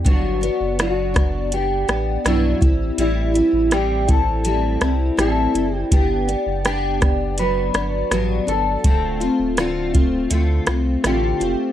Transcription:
0.04 0.49 G1 medium
0.04 0.42 G2 medium
0.04 0.42 F#3 medium
0.04 0.42 B3 medium
0.04 0.40 D4 medium
0.04 0.79 F#4 medium
0.04 kick loud
0.04 closed hi-hat medium
0.41 0.78 F#3 soft
0.41 0.79 B3 soft
0.41 0.78 D4 soft
0.41 closed hi-hat soft
0.61 1.85 F#1 medium
0.79 1.15 F#3 medium
0.79 1.15 B3 medium
0.79 1.13 D4 medium
0.79 1.53 F#4 medium
0.79 cross-stick medium
0.79 closed hi-hat medium
1.14 1.53 F#3 soft
1.14 1.52 B3 soft
1.14 1.51 D4 medium
1.14 kick medium
1.14 cross-stick medium
1.14 closed hi-hat medium
1.52 1.88 B3 medium
1.52 1.86 D4 medium
1.52 2.28 G4 medium
1.52 closed hi-hat medium
1.87 2.18 A1 medium
1.87 2.25 B3 soft
1.87 2.25 D4 soft
1.87 cross-stick medium
1.87 closed hi-hat soft
2.24 2.54 B1 loud
2.24 2.61 G2 medium
2.24 2.62 F#3 medium
2.24 2.62 B3 medium
2.24 2.60 D4 medium
2.24 2.95 E4 medium
2.24 cross-stick medium
2.24 closed hi-hat medium
2.61 2.91 A1 medium
2.61 2.97 G3 soft
2.61 2.99 C4 soft
2.61 2.98 E4 medium
2.61 kick medium
2.61 closed hi-hat soft
2.98 3.42 A1 loud
2.98 3.35 A2 medium
2.98 3.35 G3 medium
2.98 3.35 C4 medium
2.98 3.74 E4 medium
2.98 3.33 E4 medium
2.98 closed hi-hat medium
3.34 3.71 G3 soft
3.34 3.72 C4 soft
3.34 3.71 E4 soft
3.34 closed hi-hat soft
3.53 4.77 A1 loud
3.71 4.08 A2 medium
3.71 4.08 G3 medium
3.71 4.08 C4 medium
3.71 4.06 E4 medium
3.71 4.10 G4 medium
3.71 cross-stick medium
3.71 closed hi-hat medium
4.08 4.44 G3 soft
4.08 4.45 C4 soft
4.08 4.44 E4 medium
4.08 5.18 A4 medium
4.08 kick medium
4.08 closed hi-hat medium
4.44 4.81 A2 medium
4.44 4.82 G3 medium
4.44 4.82 C4 medium
4.44 4.80 E4 medium
4.44 closed hi-hat medium
4.81 5.11 C2 loud
4.81 5.17 G3 soft
4.81 5.18 C4 soft
4.81 5.18 E4 medium
4.81 cross-stick medium
4.81 closed hi-hat soft
5.17 5.47 A1 loud
5.17 5.54 A2 medium
5.17 5.55 G3 medium
5.17 5.55 C4 medium
5.17 5.53 E4 medium
5.17 5.75 A4 medium
5.17 cross-stick medium
5.17 closed hi-hat medium
5.54 5.84 F#1 medium
5.54 5.93 G3 soft
5.54 5.92 C4 soft
5.54 5.91 E4 soft
5.54 closed hi-hat soft
5.75 5.92 G4 medium
5.91 6.35 G1 loud
5.91 6.28 G2 medium
5.91 6.28 B3 medium
5.91 6.26 D4 medium
5.91 6.65 G4 medium
5.91 kick medium
5.91 closed hi-hat medium
6.28 6.65 B3 soft
6.28 6.64 D4 medium
6.28 closed hi-hat soft
6.46 7.70 F#1 medium
6.65 7.01 B3 medium
6.65 6.99 D4 medium
6.65 7.39 G4 loud
6.65 cross-stick medium
6.65 closed hi-hat soft
7.01 7.38 B3 soft
7.01 7.37 D4 medium
7.01 kick medium
7.01 cross-stick medium
7.01 closed hi-hat soft
7.38 7.75 F#3 medium
7.38 7.75 B3 medium
7.38 7.73 D4 medium
7.38 8.48 B4 medium
7.38 closed hi-hat medium
7.74 8.04 G1 medium
7.74 8.11 F#3 soft
7.74 8.12 B3 soft
7.74 8.11 D4 soft
7.74 cross-stick medium
7.74 closed hi-hat soft
8.11 8.40 A1 medium
8.11 8.48 G2 medium
8.11 8.48 F#3 medium
8.11 8.48 B3 medium
8.11 8.46 D4 medium
8.11 cross-stick medium
8.11 closed hi-hat medium
8.47 8.77 G1 medium
8.47 8.85 B3 soft
8.47 8.84 D4 soft
8.47 9.91 A4 medium
8.47 closed hi-hat soft
8.51 8.85 F#3 soft
8.84 9.28 D1 loud
8.84 9.21 D3 medium
8.84 9.21 A3 medium
8.84 9.21 C4 medium
8.84 9.19 F4 medium
8.84 kick loud
8.84 closed hi-hat medium
9.20 9.57 A3 soft
9.20 9.58 C4 soft
9.20 9.57 F4 medium
9.20 closed hi-hat soft
9.40 10.27 D1 medium
9.57 9.94 D3 medium
9.57 9.94 A3 medium
9.57 9.94 C4 medium
9.57 9.92 F4 loud
9.57 cross-stick medium
9.57 closed hi-hat soft
9.94 10.30 A3 soft
9.94 10.31 C4 medium
9.94 10.30 F4 medium
9.94 kick medium
9.94 closed hi-hat medium
10.30 10.60 D2 loud
10.30 10.67 D3 medium
10.30 10.68 A3 medium
10.30 10.67 C4 medium
10.30 10.66 F4 medium
10.30 closed hi-hat medium
10.67 10.97 C2 medium
10.67 11.04 A3 soft
10.67 11.04 C4 medium
10.67 11.04 F4 medium
10.67 cross-stick medium
10.67 closed hi-hat soft
11.04 11.34 A1 loud
11.04 11.40 D3 medium
11.04 11.41 A3 medium
11.04 11.41 C4 medium
11.04 11.39 F4 medium
11.04 11.72 G4 medium
11.04 cross-stick medium
11.04 closed hi-hat medium
11.40 11.55 F1 medium
11.40 11.72 A3 soft
11.40 11.72 C4 soft
11.40 11.72 F4 medium
11.40 closed hi-hat soft

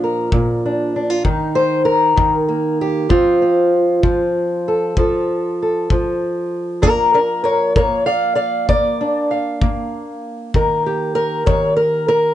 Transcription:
0.00 0.32 A#2 medium
0.00 1.25 F3 soft
0.00 0.64 D4 soft
0.00 0.31 F4 medium
0.00 1.23 A#4 soft
0.32 1.22 A#2 medium
0.32 kick medium
0.66 0.95 D4 soft
0.96 1.10 D4 soft
1.10 1.25 F4 soft
1.25 2.15 D#3 medium
1.25 3.08 D#4 soft
1.25 kick medium
1.55 1.85 C5 loud
1.85 2.79 A#4 medium
2.16 3.06 D#3 medium
2.16 kick medium
2.48 3.10 A#3 soft
2.81 3.12 G4 medium
3.09 4.02 F3 medium
3.09 3.41 C4 soft
3.09 4.97 F4 medium
3.09 kick medium
3.42 6.79 C4 soft
4.03 4.96 F3 medium
4.03 kick medium
4.68 4.97 A4 soft
4.97 5.90 F3 medium
4.97 5.60 A4 soft
4.97 kick medium
5.62 6.81 A4 soft
5.90 9.00 F3 medium
5.90 kick medium
6.82 7.78 A#3 medium
6.82 6.87 D4 medium
6.82 7.14 A#4 medium
6.82 kick medium
7.14 7.19 D4 medium
7.14 7.42 A#4 medium
7.44 7.49 A#4 medium
7.44 7.76 C#5 medium
7.76 8.68 A#3 medium
7.76 7.81 A#4 medium
7.76 8.06 C#5 medium
7.76 kick medium
8.06 8.34 D5 medium
8.06 8.35 F5 medium
8.35 8.67 D5 medium
8.35 8.68 F5 medium
8.69 9.61 A#3 medium
8.69 9.30 D5 loud
8.69 kick medium
9.01 10.51 D4 medium
9.31 10.50 F5 soft
9.62 12.34 A#3 medium
9.62 kick medium
10.54 11.46 D#3 medium
10.54 11.15 A#4 soft
10.54 kick medium
10.86 12.34 G4 soft
11.15 11.46 A#4 loud
11.46 12.34 D#3 medium
11.46 11.76 C#5 medium
11.46 kick medium
11.77 12.07 A#4 medium
12.08 12.34 A#4 loud

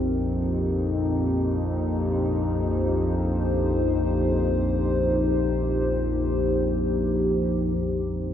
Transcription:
0.00 7.78 A#1 medium
0.00 7.77 F2 medium
0.00 2.12 C4 medium
0.00 7.77 D#4 medium
0.00 8.34 G4 medium
0.00 2.52 A#4 medium
2.21 8.34 C5 medium
7.78 8.34 A#1 medium
7.78 8.34 F2 medium
7.78 8.34 C4 medium

